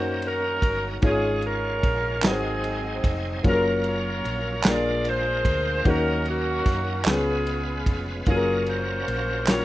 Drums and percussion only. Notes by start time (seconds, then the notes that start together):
0.22 ride
0.62 kick, ride
1.02 kick, ride
1.42 ride
1.83 kick, ride
2.22 snare, clap, ride
2.64 ride
3.04 kick, ride
3.44 kick, ride
3.84 ride
4.25 ride
4.64 snare, clap, ride
5.05 ride
5.45 kick, ride
5.85 kick, ride
6.25 ride
6.66 kick, snare, ride
7.05 snare, clap, ride
7.47 ride
7.86 kick, ride
8.26 kick, ride
8.66 ride
9.08 ride
9.47 snare, clap, ride